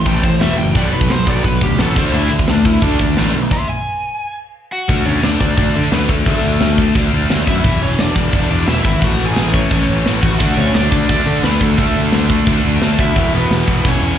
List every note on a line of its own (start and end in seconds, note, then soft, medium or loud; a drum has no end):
0.00 0.74 A2 loud
0.00 0.74 E3 medium
0.00 0.75 A3 loud
0.06 0.21 A1 medium
0.06 0.23 A2 medium
0.06 0.23 E3 medium
0.06 0.23 A3 loud
0.06 0.23 G5 medium
0.06 kick loud
0.06 crash medium
0.23 0.38 A1 medium
0.23 0.39 A2 medium
0.23 0.40 E3 medium
0.23 0.40 C5 medium
0.23 kick medium
0.40 0.56 E1 loud
0.40 0.57 A2 loud
0.40 0.57 E3 medium
0.40 0.58 A3 loud
0.40 0.57 E5 loud
0.40 snare loud
0.40 crash medium
0.58 0.73 F#1 medium
0.58 0.74 A2 medium
0.58 0.74 E3 medium
0.58 0.75 G5 medium
0.74 0.90 B1 loud
0.74 1.94 B2 medium
0.74 0.92 B2 medium
0.74 1.95 F#3 medium
0.74 0.92 F#3 loud
0.74 0.92 B3 medium
0.74 1.96 B3 loud
0.74 0.93 D5 loud
0.74 kick loud
0.74 crash medium
0.93 1.08 B1 medium
0.93 1.08 B2 medium
0.93 1.08 F#3 medium
0.93 1.10 B4 medium
1.01 kick medium
1.10 1.24 B1 loud
1.10 1.25 B2 medium
1.10 1.26 F#3 loud
1.10 1.28 C5 loud
1.10 snare loud
1.10 crash medium
1.27 1.42 B1 medium
1.27 1.43 B2 loud
1.27 1.44 F#3 loud
1.27 1.44 B3 loud
1.27 1.44 D5 loud
1.27 kick medium
1.44 1.59 B1 loud
1.44 1.60 B2 medium
1.44 1.60 F#3 loud
1.44 1.61 B4 loud
1.44 kick loud
1.44 crash medium
1.61 1.76 D2 medium
1.61 1.77 B2 medium
1.61 1.77 F#3 medium
1.61 1.79 G4 medium
1.61 kick medium
1.79 1.94 A1 loud
1.79 1.95 B2 medium
1.79 1.95 F#3 loud
1.79 1.95 B3 loud
1.79 1.96 A4 loud
1.79 snare loud
1.79 crash medium
1.95 2.10 D2 medium
1.95 3.32 D3 loud
1.95 2.12 D3 medium
1.95 2.13 A3 medium
1.95 3.33 A3 loud
1.95 2.13 D4 loud
1.95 3.34 D4 loud
1.95 2.14 C5 loud
1.95 kick loud
1.95 crash loud
2.13 2.28 D2 loud
2.13 2.29 D3 medium
2.13 2.30 A3 medium
2.13 2.30 D4 loud
2.13 2.31 E4 loud
2.13 crash medium
2.31 2.45 D2 medium
2.31 2.46 D3 medium
2.31 2.47 A3 medium
2.39 kick medium
2.48 2.77 D2 loud
2.48 2.64 D3 medium
2.48 2.64 A3 medium
2.48 2.66 D4 loud
2.48 snare loud
2.48 crash medium
2.65 2.81 D3 medium
2.65 2.81 A3 loud
2.65 2.82 E4 medium
2.65 kick medium
2.82 2.96 D2 loud
2.82 2.98 D3 medium
2.82 2.99 A3 loud
2.82 3.16 D4 loud
2.82 2.99 D4 loud
2.82 kick loud
2.82 crash medium
2.99 3.14 D2 loud
2.99 3.15 D3 medium
2.99 3.15 A3 medium
2.99 kick medium
3.17 3.32 A1 loud
3.17 3.33 D3 loud
3.17 3.33 A3 loud
3.17 3.33 D4 loud
3.17 snare loud
3.17 crash medium
3.35 3.49 B1 medium
3.35 3.50 D3 medium
3.35 3.50 A3 medium
3.51 3.68 E5 medium
3.51 3.68 C6 loud
3.51 kick loud
3.51 crash loud
3.69 4.36 G#5 loud
4.72 5.04 F#4 medium
4.72 5.07 F#5 loud
4.88 5.00 D2 loud
4.88 5.57 D3 medium
4.88 5.43 D3 medium
4.88 5.42 A3 medium
4.88 5.58 A3 medium
4.88 5.41 D4 loud
4.88 5.59 D4 loud
4.88 kick loud
4.88 crash medium
5.06 5.18 D2 loud
5.06 5.23 C#4 medium
5.06 5.24 C#5 loud
5.23 5.34 D2 loud
5.23 5.40 D4 medium
5.23 5.39 D5 medium
5.23 snare loud
5.23 crash medium
5.41 5.52 D2 medium
5.41 5.90 D3 medium
5.41 5.92 A3 medium
5.41 5.92 D4 medium
5.41 5.56 D4 medium
5.41 5.57 D5 medium
5.41 kick loud
5.57 5.69 D2 loud
5.57 6.25 D3 medium
5.57 6.26 A3 medium
5.57 5.90 D4 medium
5.57 6.27 D4 medium
5.57 5.92 D5 loud
5.57 kick loud
5.57 crash medium
5.76 5.87 D3 medium
5.92 6.03 D2 loud
5.92 6.25 D3 medium
5.92 6.26 A3 medium
5.92 6.09 B3 medium
5.92 6.27 D4 medium
5.92 6.10 B4 loud
5.92 snare loud
5.92 crash medium
6.09 6.21 D2 medium
6.09 6.14 A3 medium
6.09 6.15 A4 medium
6.09 kick loud
6.26 6.38 D2 loud
6.26 6.94 D3 medium
6.26 6.77 D3 loud
6.26 6.92 A3 medium
6.26 6.95 A3 loud
6.26 6.78 A3 loud
6.26 6.96 D4 loud
6.26 6.77 D4 loud
6.26 6.92 A4 medium
6.26 kick loud
6.26 crash medium
6.43 6.55 D2 medium
6.60 6.83 D2 loud
6.60 snare loud
6.60 crash medium
6.78 7.28 D3 medium
6.78 7.30 A3 medium
6.78 7.29 D4 medium
6.78 kick loud
6.95 7.07 D2 loud
6.95 7.63 D3 medium
6.95 7.64 A3 medium
6.95 7.65 D4 loud
6.95 kick loud
6.95 crash medium
7.13 7.24 D2 medium
7.29 7.42 D2 loud
7.29 7.63 D3 medium
7.29 7.64 A3 medium
7.29 7.64 D4 medium
7.29 snare loud
7.29 crash medium
7.47 7.59 F#2 medium
7.47 7.80 E4 medium
7.47 7.80 E5 loud
7.47 kick medium
7.64 7.76 E1 loud
7.64 8.32 E2 loud
7.64 8.15 E2 loud
7.64 8.16 B2 loud
7.64 8.33 B2 medium
7.64 8.35 E3 loud
7.64 8.16 E3 loud
7.64 kick loud
7.64 crash medium
7.83 7.94 E1 loud
7.83 7.99 C#4 medium
7.83 8.00 C#5 loud
7.98 8.11 E1 loud
7.98 8.16 D4 medium
7.98 8.15 D5 medium
7.98 snare loud
7.98 crash medium
8.16 8.27 E1 loud
8.16 8.67 E2 medium
8.16 8.68 B2 medium
8.16 8.67 E3 medium
8.16 8.49 D4 medium
8.16 8.48 D5 loud
8.16 kick medium
8.33 8.45 E1 loud
8.33 9.01 E2 medium
8.33 9.01 B2 medium
8.33 9.02 E3 medium
8.33 kick loud
8.33 crash medium
8.49 8.62 E2 medium
8.49 8.67 D4 medium
8.49 8.67 D5 loud
8.67 8.80 E1 loud
8.67 9.02 E2 medium
8.67 9.01 B2 medium
8.67 9.02 E3 medium
8.67 8.84 E4 medium
8.67 8.82 E5 loud
8.67 snare loud
8.67 crash medium
8.84 8.96 G#1 loud
8.84 9.01 E4 medium
8.84 9.02 E5 loud
8.84 kick medium
9.01 9.14 A1 loud
9.01 9.70 A2 medium
9.01 9.53 A2 medium
9.01 9.53 E3 loud
9.01 9.71 E3 medium
9.01 9.53 A3 loud
9.01 9.73 A3 medium
9.01 9.27 F#4 medium
9.01 9.25 F#5 loud
9.01 kick loud
9.01 crash medium
9.20 9.31 A1 medium
9.26 9.52 G#4 medium
9.26 9.54 G#5 loud
9.36 9.60 A1 loud
9.36 snare loud
9.36 crash medium
9.53 10.05 A2 medium
9.53 10.05 E3 medium
9.53 10.08 A3 medium
9.53 10.02 C#4 medium
9.53 10.02 C#5 loud
9.53 kick medium
9.71 9.83 A1 loud
9.71 10.39 A2 medium
9.71 10.40 E3 medium
9.71 10.41 A3 medium
9.71 kick loud
9.71 crash medium
9.90 10.01 A1 medium
10.06 10.18 A1 loud
10.06 10.39 A2 medium
10.06 10.40 E3 medium
10.06 10.41 A3 medium
10.06 snare loud
10.06 crash medium
10.22 10.34 A1 medium
10.22 10.56 F#4 medium
10.22 10.58 F#5 loud
10.22 kick medium
10.40 10.52 D2 loud
10.40 10.93 D3 loud
10.40 11.09 D3 medium
10.40 11.10 A3 medium
10.40 10.92 A3 loud
10.40 10.91 D4 loud
10.40 11.12 D4 loud
10.40 kick loud
10.40 crash medium
10.57 10.69 D2 loud
10.57 10.74 C#4 medium
10.57 10.74 C#5 loud
10.74 10.86 D2 loud
10.74 10.91 D4 medium
10.74 10.90 D5 loud
10.74 snare loud
10.74 crash medium
10.91 11.03 D2 loud
10.91 11.76 D3 medium
10.91 11.42 D3 medium
10.91 11.43 A3 medium
10.91 11.77 A3 medium
10.91 11.77 D4 medium
10.91 11.42 D4 medium
10.91 11.08 D4 medium
10.91 11.08 D5 loud
10.91 kick loud
11.09 11.21 D2 loud
11.09 11.77 D3 medium
11.09 11.78 A3 medium
11.09 11.42 D4 medium
11.09 11.79 D4 medium
11.09 11.41 D5 loud
11.09 kick loud
11.09 crash medium
11.26 11.38 D3 loud
11.43 11.55 D2 loud
11.43 11.76 D3 medium
11.43 11.77 A3 medium
11.43 11.61 B3 medium
11.43 11.78 D4 medium
11.43 11.61 B4 medium
11.43 snare loud
11.43 crash medium
11.61 11.72 D2 loud
11.61 11.78 A3 medium
11.61 11.77 A4 medium
11.61 kick medium
11.78 11.90 D2 loud
11.78 12.29 D3 loud
11.78 12.45 D3 medium
11.78 12.29 A3 loud
11.78 12.44 A3 medium
11.78 12.47 A3 medium
11.78 12.28 D4 loud
11.78 12.48 D4 medium
11.78 12.43 A4 medium
11.78 kick loud
11.78 crash medium
11.97 12.08 D2 loud
12.12 12.36 D2 loud
12.12 snare loud
12.12 crash medium
12.29 12.80 D3 medium
12.29 13.16 D3 medium
12.29 12.81 A3 medium
12.29 13.16 A3 medium
12.29 13.15 D4 medium
12.29 12.81 D4 loud
12.29 kick loud
12.47 12.58 D2 loud
12.47 13.15 D3 medium
12.47 13.16 A3 medium
12.47 13.16 D4 medium
12.47 kick loud
12.47 crash medium
12.65 12.76 D2 loud
12.81 12.93 D2 loud
12.81 13.15 D3 medium
12.81 13.16 A3 medium
12.81 13.16 D4 medium
12.81 snare loud
12.81 crash medium
12.99 13.10 D2 medium
12.99 13.32 E4 medium
12.99 13.32 E5 loud
12.99 kick loud
13.16 13.27 E1 loud
13.16 13.67 E2 loud
13.16 13.83 E2 medium
13.16 13.67 B2 loud
13.16 13.85 B2 medium
13.16 13.67 E3 loud
13.16 13.86 E3 loud
13.16 kick loud
13.16 crash medium
13.33 13.45 E1 medium
13.33 13.83 B3 medium
13.33 13.87 B4 loud
13.51 13.62 E1 loud
13.51 snare loud
13.51 crash medium
13.66 13.79 E1 medium
13.66 14.18 E2 medium
13.66 14.18 B2 medium
13.66 14.18 E3 medium
13.66 kick loud
13.84 13.97 E1 loud
13.84 14.18 E2 medium
13.84 14.18 B2 medium
13.84 14.18 E3 loud
13.84 14.18 C#4 medium
13.84 14.18 C#5 loud
13.84 kick loud
13.84 crash medium
14.02 14.14 E2 loud